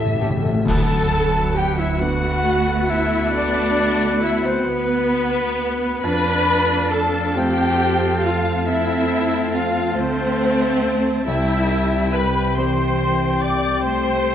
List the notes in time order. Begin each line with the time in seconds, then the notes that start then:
Already playing: A1 A2 G4 A4 E5
0.06 A2
0.14 A2
0.20 A2 A3 C#4 G4 A4
0.30 A2
0.37 A2
0.42 A2 A4
0.54 A2
0.65 D2 D3 F#3 B3 F#4 A4 B4 F#5 A5, concert bass drum, crash
0.69 A5
1.56 G4 G5
1.79 E4 E5
2.00 A3 B3 D4 F#4 F#5
2.88 E4 E5
3.31 D4 D5
4.21 E4 E5
4.44 C4 C5
4.66 D2 B3 B4
6.02 F2 A3 D4 A4 B4 F5 A5 B5
6.91 A4 A5
7.35 A3 C4 F4 G4 G5
8.23 F4 F5
8.66 C4 E4 E5
9.53 F4 F5
9.96 D2 A3 C4 C5
11.26 C2 G3 C4 E4 G4 E5 G5
12.13 B4 B5
12.55 E3 G3 C4 G4 C5 G5 C6
13.41 D5 D6
13.84 A3 C5 C6